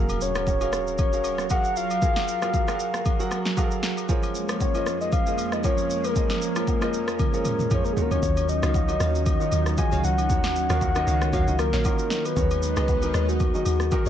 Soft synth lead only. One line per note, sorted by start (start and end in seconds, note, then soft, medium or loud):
0.00 0.23 A#4 loud
0.22 0.99 C#5 loud
0.99 1.47 C#5 loud
1.51 1.75 F#5 loud
1.77 3.28 F5 loud
4.61 4.98 C#5 medium
5.01 5.12 D#5 medium
5.13 5.54 F5 loud
5.53 5.64 D#5 medium
5.64 6.06 C#5 loud
6.04 7.45 A#4 loud
7.46 7.76 A#4 loud
7.74 7.86 C#5 medium
7.84 7.94 A#4 medium
7.93 8.03 G#4 medium
8.02 8.11 A#4 medium
8.12 8.22 C#5 medium
8.23 8.47 C#5 loud
8.49 9.22 D#5 loud
9.26 9.80 D#5 loud
9.78 10.04 G#5 loud
10.04 11.55 F#5 loud
11.59 12.27 A#4 loud
12.25 12.62 B4 loud
12.63 13.30 B4 loud
13.29 14.09 F#4 loud